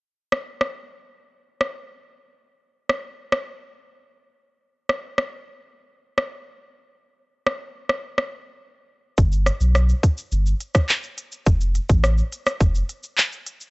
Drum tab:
HH |----------------|----------------|----------------|----------------|
SH |----------------|----------------|----------------|----------------|
CP |----------------|----------------|----------------|----------------|
SD |--r-r------r----|----r--r--------|--r-r------r----|----r--r-r------|
BD |----------------|----------------|----------------|----------------|

HH |--x---x---x---x-|--x---x---x---x-|
SH |xxxxxxxxxxxxxxxx|xxxxxxxxxxxxxxxx|
CP |------------x---|------------x---|
SD |--r-r------r----|----r--r--------|
BD |o-----o----o----|o--o----o-------|